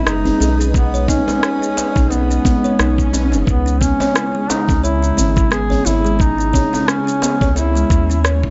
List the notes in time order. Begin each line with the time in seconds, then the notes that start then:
Already playing: G#3 G#4 B4 D#5
0.07 F#1 D#4 G#4, cross-stick, shaker
0.25 D#4, djembe bass
0.40 B1 C#4, djembe tone, shaker
0.60 C#4, shaker
0.74 B3, kick, shaker
0.94 C#5, shaker
1.08 C#4 D#4, kick, djembe tone, djembe bass, shaker
1.28 G#3, djembe slap, djembe tone, shaker
1.43 C#4, cross-stick, shaker
1.62 C#4, shaker
1.77 G#4, djembe slap, shaker
1.96 B1 D#4, kick, djembe tone, shaker
2.10 B3 C#4, swell, djembe slap, shaker
2.31 C#4, shaker
2.45 B3, kick, djembe bass, shaker
2.64 C#5, shaker
2.79 B1 D#4, cross-stick, shaker
2.98 G#3, kick, shaker
3.13 C#4, djembe slap, djembe bass, shaker
3.32 F#1 C#4, djembe slap, shaker
3.47 C#2 C#3 B3 C#4 G#4, kick, shaker
3.66 C#4, shaker
3.81 B3 C#4, kick, djembe bass, shaker
4.00 C#5, djembe slap, djembe tone, shaker
4.15 E4, cross-stick, shaker
4.35 G#3
4.50 C#4 D#4, djembe slap, shaker
4.68 C#2 C#4, kick, djembe tone, shaker
4.83 E4 C#5, shaker
5.03 E4, shaker
5.17 G#1 C#4, djembe bass, shaker
5.36 C#4, kick, shaker
5.51 B3 G#4, cross-stick, shaker
5.70 C#5, djembe bass
5.85 G#1 E4, djembe tone, shaker
6.05 G#3, shaker
6.19 C#4 D#4, kick, shaker
6.38 C#4, shaker
6.53 C#5, kick, djembe tone, djembe bass, shaker
6.73 E4, djembe slap, djembe tone, shaker
6.88 C#4, cross-stick, shaker
7.07 C#4, shaker
7.22 B3, djembe slap, shaker
7.41 C#2 C#5, kick, djembe tone, shaker
7.56 E4, djembe slap, shaker
7.75 G#3, shaker
7.90 D#2 C#4, kick, shaker
8.10 C#4, shaker
8.24 C#5, cross-stick, shaker
8.43 E4, kick